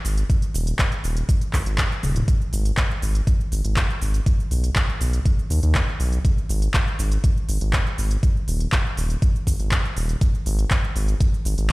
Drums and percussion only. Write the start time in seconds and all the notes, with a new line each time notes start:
0.05 open hi-hat, shaker
0.17 closed hi-hat, shaker
0.30 kick, closed hi-hat, shaker
0.42 closed hi-hat, shaker
0.54 open hi-hat, shaker
0.67 closed hi-hat, shaker
0.79 kick, clap, closed hi-hat, shaker
0.92 closed hi-hat, shaker
1.04 open hi-hat, shaker
1.17 closed hi-hat, shaker
1.29 kick, closed hi-hat, shaker
1.41 closed hi-hat, shaker
1.53 kick, clap, open hi-hat, shaker
1.66 closed hi-hat, shaker
1.78 kick, clap, closed hi-hat, shaker
1.92 shaker
2.03 open hi-hat, high tom, shaker
2.16 closed hi-hat, mid tom, shaker
2.28 kick, closed hi-hat, shaker
2.41 shaker
2.53 open hi-hat, shaker
2.65 closed hi-hat, shaker
2.77 kick, clap, closed hi-hat, shaker
2.91 shaker
3.02 open hi-hat, shaker
3.15 closed hi-hat, shaker
3.27 kick, closed hi-hat, shaker
3.41 shaker
3.52 open hi-hat, shaker
3.65 closed hi-hat, shaker
3.76 kick, clap, closed hi-hat, shaker
3.90 shaker
4.02 open hi-hat, shaker
4.14 closed hi-hat, shaker
4.26 kick, closed hi-hat, shaker
4.40 shaker
4.51 open hi-hat, shaker
4.64 closed hi-hat, shaker
4.76 kick, clap, closed hi-hat, shaker
4.89 shaker
5.01 open hi-hat, shaker
5.13 closed hi-hat, shaker
5.26 kick, closed hi-hat, shaker
5.39 shaker
5.50 open hi-hat, shaker
5.63 closed hi-hat, shaker
5.75 kick, clap, closed hi-hat, shaker
5.88 shaker
6.00 open hi-hat, shaker
6.13 closed hi-hat, shaker
6.25 kick, closed hi-hat, shaker
6.38 shaker
6.49 open hi-hat, shaker
6.62 closed hi-hat, shaker
6.74 kick, clap, closed hi-hat, shaker
6.88 shaker
6.99 open hi-hat, shaker
7.12 closed hi-hat, shaker
7.24 kick, closed hi-hat, shaker
7.37 shaker
7.49 open hi-hat, shaker
7.61 closed hi-hat, shaker
7.73 kick, clap, closed hi-hat, shaker
7.87 shaker
7.98 open hi-hat, shaker
8.11 closed hi-hat, shaker
8.23 kick, closed hi-hat, shaker
8.36 shaker
8.48 open hi-hat, shaker
8.60 closed hi-hat, shaker
8.72 kick, clap, closed hi-hat, shaker
8.86 shaker
8.97 open hi-hat, shaker
9.10 closed hi-hat, shaker
9.22 kick, closed hi-hat, shaker
9.36 shaker
9.47 kick, open hi-hat, shaker
9.60 closed hi-hat, shaker
9.71 kick, clap, closed hi-hat, shaker
9.85 shaker
9.97 open hi-hat, shaker
10.09 closed hi-hat, shaker
10.21 kick, closed hi-hat, shaker
10.35 shaker
10.46 open hi-hat, shaker
10.59 closed hi-hat, shaker
10.71 kick, clap, closed hi-hat, shaker
10.84 shaker
10.96 open hi-hat, shaker
11.08 closed hi-hat, shaker
11.21 kick, closed hi-hat, shaker
11.34 shaker
11.45 open hi-hat, shaker
11.58 closed hi-hat, shaker